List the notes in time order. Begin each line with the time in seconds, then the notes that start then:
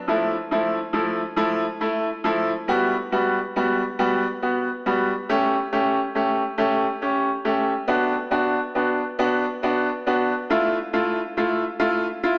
0.08 F3 A3 E4
0.51 F3 A3 E4
0.93 F3 A3 E4
1.36 F3 A3 E4
1.81 A3 E4
2.24 F3 A3 E4
2.68 G3 B3 F#4
3.12 G3 B3 F#4
3.56 G3 B3 F#4
3.99 G3 B3 F#4
4.42 B3 F#4
4.86 G3 B3 F#4
5.29 A3 C#4 G4
5.73 A3 C#4 G4
6.15 A3 C#4 G4
6.58 A3 C#4 G4
7.02 C#4 G4
7.45 A3 C#4 G4
7.88 B3 D4 F#4
8.31 B3 D4 F#4
8.75 B3 D4 F#4
9.19 B3 D4 F#4
9.63 B3 D4 F#4
10.07 B3 D4 F#4
10.50 A3 E4 F4
10.93 A3 E4 F4
11.37 A3 E4 F4
11.80 A3 E4 F4
12.23 E4 F4